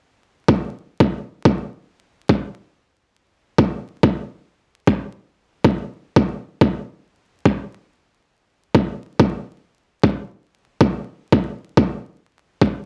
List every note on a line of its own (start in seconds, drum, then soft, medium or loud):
0.48 kick loud
1.00 kick loud
1.45 kick medium
2.29 kick medium
3.58 kick loud
4.03 kick loud
4.87 kick medium
5.64 kick loud
6.16 kick loud
6.61 kick loud
7.45 kick medium
8.75 kick loud
9.20 kick loud
10.04 kick medium
10.81 kick loud
11.32 kick loud
11.77 kick loud
12.61 kick medium